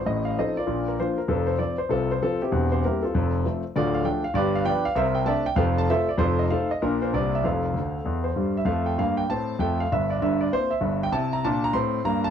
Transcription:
0.06 A1 A2 D#5
0.25 F5
0.38 F3 C4 D#4 A4 C5 D#5
0.57 F4 A#4 D5
0.67 A#1 A#2
0.88 A#4
0.99 F3 A#3 D4 F4 C5
1.18 A#4
1.28 F1 F2 C4 F4 A4
1.47 C5
1.58 F3 C4 D5
1.78 C5
1.89 C2 C3 C4 F4 A4
2.11 C5
2.22 F3 C4 F4 A4
2.42 C4 E4 G4
2.52 E1 E2
2.72 C5
2.84 G3 A#3 C4 E4 G4 A#4
3.03 C4 F4 A4
3.14 F1 F2
3.46 F3 A3 C4
3.76 D1 D2 F4 A4 D5
3.94 F5
4.04 F3 A3 D4 G5
4.24 F5
4.34 G1 G2 G4 B4 D5
4.55 F5
4.65 F3 B3 D4 B4 D5 G5
4.85 F5
4.95 C2 C3 A#4 C5 E5
5.15 G5
5.25 A3 C4 D4 D5 E5 A5
5.46 G5
5.56 F1 F2 A4 C5 F5
5.78 A5
5.89 A3 C4 F4 A4 C5 E5
6.09 D5
6.18 F1 F2 F4 A4 C5
6.39 D#5
6.50 A3 C4 D#4 A4 C5 F5
6.71 D#5
6.81 A#1 A#2 A#3 D4 F4 A#4
7.02 C5
7.13 C2 C3 A#3 C4 G4 D5
7.35 E5
7.44 F1 F2 A4 C5 F5
7.74 D2 D3
8.05 E2 E3
8.24 C5
8.36 G2 G3
8.57 E5
8.65 F2 A3 F5
8.86 G5
8.98 G2 A#3 F5
9.17 G5
9.30 A2 C4 A5
9.59 F2 A3 G5
9.80 F5
9.92 G1 G2 E5
10.10 D5
10.22 G1 G2 E5
10.41 D5
10.52 A#3 C4 E4 C5
10.71 E5
10.81 G1 G2
11.03 G5
11.12 C3 E4 A5
11.33 A#5
11.44 A#2 D4 A5
11.64 A#5
11.73 A2 C4 C6
12.05 G2 A#3 A#5
12.24 A5

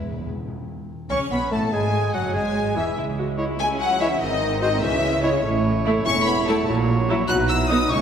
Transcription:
Already playing: E1 E2 G#3 E4 B4
0.04 E2
0.11 E2
0.19 E2
0.27 E2
0.34 E2
0.48 E2
1.09 C#2 C#3 C#4 C#5 C#6
1.31 B1 B2 B3 B4 B5
1.51 A1 A2 A3 A4 A5
1.72 G#1 G#2 G#3 G#4 G#5
2.14 F#1 F#2 F#3 F#4 F#5
2.34 G#1 G#2 G#3 G#4 G#5
2.76 E1 E2 E3 E4 E5
2.97 C#2 G#3 E4
3.18 F#4
3.38 G#3 E4 C#5
3.60 G#3 C#4 G#5
3.80 F#3 F#5
4.00 E3 G#3 E4 C#5 E5
4.21 G#1 G#2 D#3 C4 D#4 D#5
4.61 D#3 G#3 F#4 C5 D#5
4.82 C#2 C#3 E3 G#3 C#4 E5
5.23 C#3 G#3 E4 C#5
5.44 A1 A2 A3 E4 C#5
5.85 A3 E4
6.05 E1 E2 A3 C#4 E4 C#5 C#6
6.25 B3 B5
6.46 A3 E4 A5
6.67 A#1 A#2 F#3 E4 C#5
7.09 F#3 E4
7.28 B1 B2 F#3 D#4 F#4 B4 F#6
7.49 E4 E6
7.68 B3 D#4 D#6
7.89 C#2 C#3 G#3 C#4 E4 C#5 C#6

